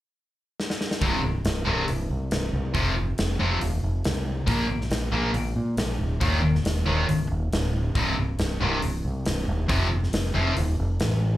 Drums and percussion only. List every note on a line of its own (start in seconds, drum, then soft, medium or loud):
0.60 snare medium
0.70 snare medium
0.81 snare medium
0.91 snare medium
1.01 kick loud
1.01 open hi-hat soft
1.45 snare loud
1.45 open hi-hat medium
1.88 open hi-hat soft
2.31 snare loud
2.31 open hi-hat medium
2.75 kick loud
2.75 open hi-hat soft
3.18 snare loud
3.18 open hi-hat soft
3.61 open hi-hat soft
4.05 snare loud
4.05 open hi-hat soft
4.48 kick loud
4.48 open hi-hat medium
4.81 snare soft
4.91 snare loud
4.91 open hi-hat soft
5.34 open hi-hat soft
5.77 snare loud
5.77 open hi-hat medium
6.21 kick loud
6.21 open hi-hat soft
6.55 snare soft
6.65 snare loud
6.65 open hi-hat soft
7.09 open hi-hat soft
7.53 snare loud
7.53 open hi-hat medium
7.95 kick loud
7.95 open hi-hat soft
8.39 snare loud
8.39 open hi-hat soft
8.82 open hi-hat soft
9.26 snare loud
9.26 open hi-hat medium
9.69 kick loud
9.69 open hi-hat medium
10.03 snare soft
10.13 snare loud
10.13 open hi-hat medium
10.57 open hi-hat medium
11.00 snare loud
11.00 open hi-hat soft